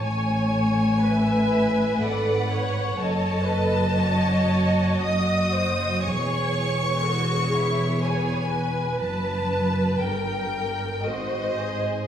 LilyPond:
<<
  \new Staff \with { instrumentName = "Violin section" } { \time 3/4 \key fis \minor \tempo 4 = 60 gis''2 fis''4 | \key cis \minor a''2 ees'''4 | cis'''2 gis''4 | a''4 g''4 dis''4 | }
  \new Staff \with { instrumentName = "Viola section" } { \time 3/4 \key fis \minor cis''4 b'4 a'8 cis''8 | \key cis \minor cis''8 b'8 cis''4 ees''8 c''8 | cis''4 gis'4 cis''8 b'8~ | b'4 bes'8 bes'8 bis'4 | }
  \new Staff \with { instrumentName = "Violin section" } { \time 3/4 \key fis \minor << { cis''4 e''4 d''8 cis''8 | \key cis \minor dis''2. | cis''2 b'4~ | b'4 bes'4 bis'4 | } \\ { cis''4 b'2 | a'4 fis'2 | gis'4 fis'8 e'8 gis'8 b'8~ | b'4 bes'4 fis'8 gis'8 | } >> }
  \new Staff \with { instrumentName = "Cello section" } { \clef bass \time 3/4 \key fis \minor a,2 gis,4 | \key cis \minor fis,2 ges,4 | e,2. | fis,4 g,4 gis,4 | }
  \new Staff \with { instrumentName = "Double bass section" } { \clef bass \time 3/4 \key fis \minor a,,2 gis,,4 | \key cis \minor fis,,2 ges,,4 | e,,2. | fis,,4 g,,4 gis,,4 | }
>>